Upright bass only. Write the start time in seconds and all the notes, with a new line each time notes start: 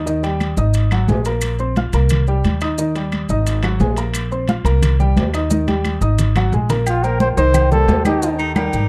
Already playing: D#2
0.57 G#1
1.08 A#1
1.93 C2
2.44 D#2
3.29 G#1
3.80 A#1
4.64 C2
5.17 D#2
6.01 G#1
6.52 A#1
7.37 C2
7.88 D#2
8.73 G#1